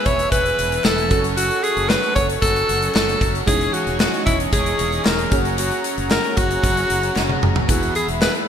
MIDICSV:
0, 0, Header, 1, 7, 480
1, 0, Start_track
1, 0, Tempo, 526316
1, 1252, Time_signature, 4, 2, 24, 8
1, 7734, End_track
2, 0, Start_track
2, 0, Title_t, "Analog synth pad"
2, 0, Program_c, 0, 89
2, 0, Note_on_c, 0, 71, 83
2, 0, Note_on_c, 0, 76, 78
2, 0, Note_on_c, 0, 80, 77
2, 0, Note_on_c, 0, 88, 94
2, 993, Note_off_c, 0, 88, 0
2, 994, Note_off_c, 0, 71, 0
2, 995, Note_off_c, 0, 76, 0
2, 995, Note_off_c, 0, 80, 0
2, 1005, Note_on_c, 0, 69, 80
2, 1005, Note_on_c, 0, 85, 87
2, 1006, Note_on_c, 0, 73, 73
2, 1006, Note_on_c, 0, 78, 73
2, 3147, Note_off_c, 0, 69, 0
2, 3147, Note_off_c, 0, 73, 0
2, 3147, Note_off_c, 0, 78, 0
2, 3147, Note_off_c, 0, 85, 0
2, 3168, Note_on_c, 0, 68, 83
2, 3168, Note_on_c, 0, 73, 81
2, 3170, Note_on_c, 0, 75, 81
2, 3170, Note_on_c, 0, 85, 93
2, 4833, Note_off_c, 0, 73, 0
2, 4834, Note_off_c, 0, 75, 0
2, 4834, Note_off_c, 0, 85, 0
2, 4849, Note_on_c, 0, 73, 71
2, 4850, Note_on_c, 0, 78, 72
2, 4851, Note_on_c, 0, 82, 85
2, 6989, Note_off_c, 0, 73, 0
2, 6989, Note_off_c, 0, 78, 0
2, 6990, Note_off_c, 0, 82, 0
2, 7010, Note_on_c, 0, 83, 91
2, 7011, Note_on_c, 0, 71, 78
2, 7011, Note_on_c, 0, 76, 78
2, 7734, Note_off_c, 0, 68, 0
2, 7734, Note_off_c, 0, 71, 0
2, 7734, Note_off_c, 0, 76, 0
2, 7734, Note_off_c, 0, 83, 0
2, 7734, End_track
3, 0, Start_track
3, 0, Title_t, "Alto saxophone"
3, 0, Program_c, 1, 65
3, 52, Note_on_c, 1, 73, 114
3, 284, Note_off_c, 1, 73, 0
3, 289, Note_on_c, 1, 71, 116
3, 769, Note_on_c, 1, 69, 106
3, 783, Note_off_c, 1, 71, 0
3, 1130, Note_off_c, 1, 69, 0
3, 1244, Note_on_c, 1, 66, 106
3, 1488, Note_on_c, 1, 68, 101
3, 1501, Note_off_c, 1, 66, 0
3, 1723, Note_on_c, 1, 71, 107
3, 1737, Note_off_c, 1, 68, 0
3, 1959, Note_off_c, 1, 71, 0
3, 1964, Note_on_c, 1, 73, 108
3, 2074, Note_off_c, 1, 73, 0
3, 2205, Note_on_c, 1, 69, 113
3, 2654, Note_off_c, 1, 69, 0
3, 2685, Note_on_c, 1, 69, 100
3, 3023, Note_off_c, 1, 69, 0
3, 3165, Note_on_c, 1, 68, 108
3, 3404, Note_on_c, 1, 66, 93
3, 3418, Note_off_c, 1, 68, 0
3, 3639, Note_off_c, 1, 66, 0
3, 3644, Note_on_c, 1, 66, 90
3, 3871, Note_off_c, 1, 66, 0
3, 3881, Note_on_c, 1, 64, 87
3, 3991, Note_off_c, 1, 64, 0
3, 4129, Note_on_c, 1, 68, 100
3, 4605, Note_on_c, 1, 70, 95
3, 4619, Note_off_c, 1, 68, 0
3, 4968, Note_off_c, 1, 70, 0
3, 5090, Note_on_c, 1, 66, 88
3, 5314, Note_off_c, 1, 66, 0
3, 5572, Note_on_c, 1, 70, 103
3, 5810, Note_on_c, 1, 66, 113
3, 5823, Note_off_c, 1, 70, 0
3, 6771, Note_off_c, 1, 66, 0
3, 7019, Note_on_c, 1, 66, 87
3, 7239, Note_off_c, 1, 66, 0
3, 7257, Note_on_c, 1, 68, 87
3, 7364, Note_off_c, 1, 68, 0
3, 7493, Note_on_c, 1, 71, 90
3, 7601, Note_off_c, 1, 71, 0
3, 7734, End_track
4, 0, Start_track
4, 0, Title_t, "FM electric piano"
4, 0, Program_c, 2, 5
4, 0, Control_c, 2, 64, 127
4, 0, Note_on_c, 2, 52, 66
4, 0, Note_on_c, 2, 59, 68
4, 0, Note_on_c, 2, 64, 58
4, 0, Note_on_c, 2, 68, 74
4, 973, Note_off_c, 2, 59, 0
4, 978, Note_off_c, 2, 64, 0
4, 983, Note_off_c, 2, 68, 0
4, 994, Note_on_c, 2, 61, 70
4, 1008, Note_on_c, 2, 66, 58
4, 1016, Note_on_c, 2, 69, 74
4, 1022, Control_c, 2, 64, 0
4, 1028, Note_off_c, 2, 52, 0
4, 1201, Control_c, 2, 64, 127
4, 2886, Note_off_c, 2, 61, 0
4, 2893, Note_off_c, 2, 66, 0
4, 2897, Note_off_c, 2, 69, 0
4, 3157, Note_on_c, 2, 56, 70
4, 3166, Note_on_c, 2, 61, 65
4, 3169, Note_on_c, 2, 63, 61
4, 3170, Note_on_c, 2, 52, 65
4, 3175, Note_on_c, 2, 64, 61
4, 3180, Note_on_c, 2, 73, 78
4, 3185, Control_c, 2, 64, 0
4, 3365, Control_c, 2, 64, 127
4, 3854, Note_off_c, 2, 52, 0
4, 4811, Note_off_c, 2, 56, 0
4, 4815, Note_off_c, 2, 61, 0
4, 4817, Note_off_c, 2, 63, 0
4, 4820, Note_off_c, 2, 64, 0
4, 4822, Note_off_c, 2, 73, 0
4, 4843, Note_on_c, 2, 58, 69
4, 4849, Note_on_c, 2, 61, 63
4, 4854, Note_on_c, 2, 66, 60
4, 4862, Note_on_c, 2, 68, 63
4, 4863, Control_c, 2, 64, 0
4, 4864, Note_on_c, 2, 73, 75
4, 5008, Control_c, 2, 64, 127
4, 6731, Note_off_c, 2, 58, 0
4, 6734, Note_off_c, 2, 61, 0
4, 6736, Note_off_c, 2, 66, 0
4, 6740, Note_off_c, 2, 68, 0
4, 6741, Note_off_c, 2, 73, 0
4, 7003, Note_on_c, 2, 59, 65
4, 7012, Note_on_c, 2, 52, 64
4, 7014, Note_on_c, 2, 64, 64
4, 7022, Control_c, 2, 64, 0
4, 7024, Note_on_c, 2, 68, 74
4, 7189, Control_c, 2, 64, 127
4, 7695, Note_off_c, 2, 52, 0
4, 7734, Note_off_c, 2, 59, 0
4, 7734, Note_off_c, 2, 64, 0
4, 7734, Note_off_c, 2, 68, 0
4, 7734, End_track
5, 0, Start_track
5, 0, Title_t, "Overdriven electric guitar"
5, 0, Program_c, 3, 29
5, 0, Note_on_c, 3, 52, 80
5, 0, Note_on_c, 3, 59, 82
5, 0, Note_on_c, 3, 64, 86
5, 271, Note_off_c, 3, 52, 0
5, 282, Note_on_c, 3, 52, 66
5, 285, Note_off_c, 3, 59, 0
5, 296, Note_on_c, 3, 59, 68
5, 298, Note_off_c, 3, 64, 0
5, 309, Note_on_c, 3, 64, 64
5, 754, Note_off_c, 3, 52, 0
5, 765, Note_on_c, 3, 52, 59
5, 772, Note_off_c, 3, 59, 0
5, 780, Note_off_c, 3, 64, 0
5, 783, Note_on_c, 3, 59, 59
5, 792, Note_on_c, 3, 64, 67
5, 994, Note_off_c, 3, 64, 0
5, 997, Note_on_c, 3, 66, 73
5, 1009, Note_off_c, 3, 52, 0
5, 1016, Note_off_c, 3, 59, 0
5, 1019, Note_on_c, 3, 61, 66
5, 1039, Note_on_c, 3, 54, 60
5, 2186, Note_off_c, 3, 54, 0
5, 2197, Note_on_c, 3, 54, 64
5, 2205, Note_off_c, 3, 66, 0
5, 2209, Note_off_c, 3, 61, 0
5, 2213, Note_on_c, 3, 61, 65
5, 2224, Note_on_c, 3, 66, 67
5, 2672, Note_off_c, 3, 54, 0
5, 2683, Note_on_c, 3, 54, 67
5, 2693, Note_off_c, 3, 61, 0
5, 2697, Note_on_c, 3, 61, 71
5, 2698, Note_off_c, 3, 66, 0
5, 2710, Note_on_c, 3, 66, 62
5, 3157, Note_on_c, 3, 49, 82
5, 3167, Note_off_c, 3, 54, 0
5, 3178, Note_on_c, 3, 56, 88
5, 3181, Note_off_c, 3, 66, 0
5, 3193, Note_off_c, 3, 61, 0
5, 3196, Note_on_c, 3, 61, 93
5, 4108, Note_off_c, 3, 49, 0
5, 4119, Note_on_c, 3, 49, 63
5, 4130, Note_off_c, 3, 56, 0
5, 4133, Note_on_c, 3, 56, 69
5, 4142, Note_off_c, 3, 61, 0
5, 4146, Note_on_c, 3, 61, 72
5, 4585, Note_off_c, 3, 49, 0
5, 4596, Note_on_c, 3, 49, 62
5, 4611, Note_off_c, 3, 56, 0
5, 4614, Note_on_c, 3, 56, 66
5, 4619, Note_off_c, 3, 61, 0
5, 4623, Note_on_c, 3, 61, 66
5, 4835, Note_on_c, 3, 66, 74
5, 4844, Note_off_c, 3, 49, 0
5, 4847, Note_off_c, 3, 61, 0
5, 4853, Note_off_c, 3, 56, 0
5, 4858, Note_on_c, 3, 61, 58
5, 4876, Note_on_c, 3, 54, 57
5, 6028, Note_off_c, 3, 54, 0
5, 6039, Note_on_c, 3, 54, 66
5, 6043, Note_off_c, 3, 66, 0
5, 6044, Note_off_c, 3, 61, 0
5, 6055, Note_on_c, 3, 61, 65
5, 6069, Note_on_c, 3, 66, 77
5, 6509, Note_off_c, 3, 54, 0
5, 6520, Note_on_c, 3, 54, 62
5, 6524, Note_off_c, 3, 61, 0
5, 6535, Note_on_c, 3, 61, 74
5, 6538, Note_off_c, 3, 66, 0
5, 6549, Note_on_c, 3, 66, 80
5, 6996, Note_off_c, 3, 54, 0
5, 7000, Note_on_c, 3, 52, 79
5, 7013, Note_off_c, 3, 61, 0
5, 7020, Note_off_c, 3, 66, 0
5, 7023, Note_on_c, 3, 59, 79
5, 7041, Note_on_c, 3, 64, 85
5, 7734, Note_off_c, 3, 52, 0
5, 7734, Note_off_c, 3, 59, 0
5, 7734, Note_off_c, 3, 64, 0
5, 7734, End_track
6, 0, Start_track
6, 0, Title_t, "Fretless electric bass"
6, 0, Program_c, 4, 35
6, 55, Note_on_c, 4, 28, 90
6, 227, Note_off_c, 4, 28, 0
6, 291, Note_on_c, 4, 28, 109
6, 464, Note_off_c, 4, 28, 0
6, 533, Note_on_c, 4, 28, 99
6, 705, Note_off_c, 4, 28, 0
6, 771, Note_on_c, 4, 28, 102
6, 1012, Note_off_c, 4, 28, 0
6, 1012, Note_on_c, 4, 30, 107
6, 1358, Note_off_c, 4, 30, 0
6, 1610, Note_on_c, 4, 30, 97
6, 1783, Note_off_c, 4, 30, 0
6, 1972, Note_on_c, 4, 30, 99
6, 2145, Note_off_c, 4, 30, 0
6, 2210, Note_on_c, 4, 30, 108
6, 2383, Note_off_c, 4, 30, 0
6, 2453, Note_on_c, 4, 30, 99
6, 2625, Note_off_c, 4, 30, 0
6, 2691, Note_on_c, 4, 30, 99
6, 2864, Note_off_c, 4, 30, 0
6, 2928, Note_on_c, 4, 30, 99
6, 3102, Note_off_c, 4, 30, 0
6, 3169, Note_on_c, 4, 28, 107
6, 3343, Note_off_c, 4, 28, 0
6, 3527, Note_on_c, 4, 28, 96
6, 3702, Note_off_c, 4, 28, 0
6, 3892, Note_on_c, 4, 28, 95
6, 4065, Note_off_c, 4, 28, 0
6, 4128, Note_on_c, 4, 28, 105
6, 4302, Note_off_c, 4, 28, 0
6, 4368, Note_on_c, 4, 28, 113
6, 4542, Note_off_c, 4, 28, 0
6, 4611, Note_on_c, 4, 28, 96
6, 4784, Note_off_c, 4, 28, 0
6, 4850, Note_on_c, 4, 30, 91
6, 5196, Note_off_c, 4, 30, 0
6, 5451, Note_on_c, 4, 30, 102
6, 5624, Note_off_c, 4, 30, 0
6, 5814, Note_on_c, 4, 30, 97
6, 5986, Note_off_c, 4, 30, 0
6, 6052, Note_on_c, 4, 30, 113
6, 6225, Note_off_c, 4, 30, 0
6, 6292, Note_on_c, 4, 30, 97
6, 6465, Note_off_c, 4, 30, 0
6, 6530, Note_on_c, 4, 30, 103
6, 6704, Note_off_c, 4, 30, 0
6, 6770, Note_on_c, 4, 30, 102
6, 6944, Note_off_c, 4, 30, 0
6, 7012, Note_on_c, 4, 28, 105
6, 7184, Note_off_c, 4, 28, 0
6, 7368, Note_on_c, 4, 28, 98
6, 7542, Note_off_c, 4, 28, 0
6, 7734, End_track
7, 0, Start_track
7, 0, Title_t, "Drums"
7, 52, Note_on_c, 9, 42, 87
7, 55, Note_on_c, 9, 36, 100
7, 143, Note_off_c, 9, 42, 0
7, 146, Note_off_c, 9, 36, 0
7, 175, Note_on_c, 9, 42, 64
7, 266, Note_off_c, 9, 42, 0
7, 291, Note_on_c, 9, 36, 91
7, 292, Note_on_c, 9, 42, 96
7, 382, Note_off_c, 9, 36, 0
7, 383, Note_off_c, 9, 42, 0
7, 415, Note_on_c, 9, 42, 51
7, 506, Note_off_c, 9, 42, 0
7, 536, Note_on_c, 9, 42, 83
7, 627, Note_off_c, 9, 42, 0
7, 657, Note_on_c, 9, 42, 55
7, 748, Note_off_c, 9, 42, 0
7, 766, Note_on_c, 9, 39, 93
7, 772, Note_on_c, 9, 54, 74
7, 773, Note_on_c, 9, 38, 107
7, 858, Note_off_c, 9, 39, 0
7, 863, Note_off_c, 9, 54, 0
7, 864, Note_off_c, 9, 38, 0
7, 895, Note_on_c, 9, 42, 51
7, 986, Note_off_c, 9, 42, 0
7, 1009, Note_on_c, 9, 42, 77
7, 1012, Note_on_c, 9, 36, 115
7, 1100, Note_off_c, 9, 42, 0
7, 1103, Note_off_c, 9, 36, 0
7, 1133, Note_on_c, 9, 42, 62
7, 1224, Note_off_c, 9, 42, 0
7, 1254, Note_on_c, 9, 42, 108
7, 1345, Note_off_c, 9, 42, 0
7, 1376, Note_on_c, 9, 42, 51
7, 1467, Note_off_c, 9, 42, 0
7, 1493, Note_on_c, 9, 42, 80
7, 1584, Note_off_c, 9, 42, 0
7, 1612, Note_on_c, 9, 42, 51
7, 1704, Note_off_c, 9, 42, 0
7, 1729, Note_on_c, 9, 39, 89
7, 1732, Note_on_c, 9, 38, 115
7, 1732, Note_on_c, 9, 54, 68
7, 1820, Note_off_c, 9, 39, 0
7, 1823, Note_off_c, 9, 38, 0
7, 1823, Note_off_c, 9, 54, 0
7, 1855, Note_on_c, 9, 42, 46
7, 1946, Note_off_c, 9, 42, 0
7, 1968, Note_on_c, 9, 42, 88
7, 1972, Note_on_c, 9, 36, 102
7, 2060, Note_off_c, 9, 42, 0
7, 2063, Note_off_c, 9, 36, 0
7, 2093, Note_on_c, 9, 42, 63
7, 2184, Note_off_c, 9, 42, 0
7, 2209, Note_on_c, 9, 36, 89
7, 2210, Note_on_c, 9, 42, 93
7, 2300, Note_off_c, 9, 36, 0
7, 2301, Note_off_c, 9, 42, 0
7, 2335, Note_on_c, 9, 42, 53
7, 2427, Note_off_c, 9, 42, 0
7, 2454, Note_on_c, 9, 42, 85
7, 2545, Note_off_c, 9, 42, 0
7, 2576, Note_on_c, 9, 42, 57
7, 2667, Note_off_c, 9, 42, 0
7, 2684, Note_on_c, 9, 39, 88
7, 2696, Note_on_c, 9, 38, 120
7, 2696, Note_on_c, 9, 54, 74
7, 2775, Note_off_c, 9, 39, 0
7, 2787, Note_off_c, 9, 54, 0
7, 2788, Note_off_c, 9, 38, 0
7, 2818, Note_on_c, 9, 42, 54
7, 2910, Note_off_c, 9, 42, 0
7, 2929, Note_on_c, 9, 36, 97
7, 2933, Note_on_c, 9, 42, 79
7, 3020, Note_off_c, 9, 36, 0
7, 3024, Note_off_c, 9, 42, 0
7, 3055, Note_on_c, 9, 42, 59
7, 3146, Note_off_c, 9, 42, 0
7, 3169, Note_on_c, 9, 36, 106
7, 3171, Note_on_c, 9, 42, 107
7, 3260, Note_off_c, 9, 36, 0
7, 3262, Note_off_c, 9, 42, 0
7, 3293, Note_on_c, 9, 42, 50
7, 3384, Note_off_c, 9, 42, 0
7, 3408, Note_on_c, 9, 42, 78
7, 3500, Note_off_c, 9, 42, 0
7, 3528, Note_on_c, 9, 42, 48
7, 3620, Note_off_c, 9, 42, 0
7, 3649, Note_on_c, 9, 38, 122
7, 3649, Note_on_c, 9, 39, 96
7, 3649, Note_on_c, 9, 54, 66
7, 3740, Note_off_c, 9, 38, 0
7, 3740, Note_off_c, 9, 39, 0
7, 3740, Note_off_c, 9, 54, 0
7, 3774, Note_on_c, 9, 42, 47
7, 3865, Note_off_c, 9, 42, 0
7, 3890, Note_on_c, 9, 42, 86
7, 3892, Note_on_c, 9, 36, 98
7, 3981, Note_off_c, 9, 42, 0
7, 3983, Note_off_c, 9, 36, 0
7, 4013, Note_on_c, 9, 42, 66
7, 4104, Note_off_c, 9, 42, 0
7, 4128, Note_on_c, 9, 36, 96
7, 4129, Note_on_c, 9, 42, 89
7, 4219, Note_off_c, 9, 36, 0
7, 4220, Note_off_c, 9, 42, 0
7, 4252, Note_on_c, 9, 42, 52
7, 4343, Note_off_c, 9, 42, 0
7, 4369, Note_on_c, 9, 42, 89
7, 4460, Note_off_c, 9, 42, 0
7, 4492, Note_on_c, 9, 42, 54
7, 4583, Note_off_c, 9, 42, 0
7, 4603, Note_on_c, 9, 39, 86
7, 4611, Note_on_c, 9, 38, 112
7, 4611, Note_on_c, 9, 54, 72
7, 4694, Note_off_c, 9, 39, 0
7, 4702, Note_off_c, 9, 54, 0
7, 4703, Note_off_c, 9, 38, 0
7, 4731, Note_on_c, 9, 42, 54
7, 4822, Note_off_c, 9, 42, 0
7, 4847, Note_on_c, 9, 42, 77
7, 4850, Note_on_c, 9, 36, 106
7, 4939, Note_off_c, 9, 42, 0
7, 4941, Note_off_c, 9, 36, 0
7, 4971, Note_on_c, 9, 42, 58
7, 5063, Note_off_c, 9, 42, 0
7, 5090, Note_on_c, 9, 42, 109
7, 5181, Note_off_c, 9, 42, 0
7, 5211, Note_on_c, 9, 42, 50
7, 5303, Note_off_c, 9, 42, 0
7, 5329, Note_on_c, 9, 42, 82
7, 5420, Note_off_c, 9, 42, 0
7, 5451, Note_on_c, 9, 42, 49
7, 5542, Note_off_c, 9, 42, 0
7, 5568, Note_on_c, 9, 39, 92
7, 5571, Note_on_c, 9, 38, 120
7, 5571, Note_on_c, 9, 54, 68
7, 5659, Note_off_c, 9, 39, 0
7, 5662, Note_off_c, 9, 38, 0
7, 5663, Note_off_c, 9, 54, 0
7, 5694, Note_on_c, 9, 42, 45
7, 5785, Note_off_c, 9, 42, 0
7, 5809, Note_on_c, 9, 42, 86
7, 5813, Note_on_c, 9, 36, 105
7, 5900, Note_off_c, 9, 42, 0
7, 5904, Note_off_c, 9, 36, 0
7, 5934, Note_on_c, 9, 42, 59
7, 6025, Note_off_c, 9, 42, 0
7, 6051, Note_on_c, 9, 36, 97
7, 6055, Note_on_c, 9, 42, 89
7, 6142, Note_off_c, 9, 36, 0
7, 6146, Note_off_c, 9, 42, 0
7, 6175, Note_on_c, 9, 42, 50
7, 6266, Note_off_c, 9, 42, 0
7, 6293, Note_on_c, 9, 42, 91
7, 6384, Note_off_c, 9, 42, 0
7, 6414, Note_on_c, 9, 42, 57
7, 6505, Note_off_c, 9, 42, 0
7, 6529, Note_on_c, 9, 39, 87
7, 6532, Note_on_c, 9, 38, 63
7, 6620, Note_off_c, 9, 39, 0
7, 6624, Note_off_c, 9, 38, 0
7, 6652, Note_on_c, 9, 48, 72
7, 6743, Note_off_c, 9, 48, 0
7, 6775, Note_on_c, 9, 45, 101
7, 6866, Note_off_c, 9, 45, 0
7, 6893, Note_on_c, 9, 43, 104
7, 6985, Note_off_c, 9, 43, 0
7, 7012, Note_on_c, 9, 36, 108
7, 7012, Note_on_c, 9, 42, 108
7, 7103, Note_off_c, 9, 36, 0
7, 7104, Note_off_c, 9, 42, 0
7, 7138, Note_on_c, 9, 42, 49
7, 7229, Note_off_c, 9, 42, 0
7, 7252, Note_on_c, 9, 42, 77
7, 7344, Note_off_c, 9, 42, 0
7, 7373, Note_on_c, 9, 42, 51
7, 7464, Note_off_c, 9, 42, 0
7, 7493, Note_on_c, 9, 39, 98
7, 7494, Note_on_c, 9, 38, 126
7, 7494, Note_on_c, 9, 54, 65
7, 7584, Note_off_c, 9, 39, 0
7, 7585, Note_off_c, 9, 38, 0
7, 7585, Note_off_c, 9, 54, 0
7, 7612, Note_on_c, 9, 42, 43
7, 7703, Note_off_c, 9, 42, 0
7, 7734, End_track
0, 0, End_of_file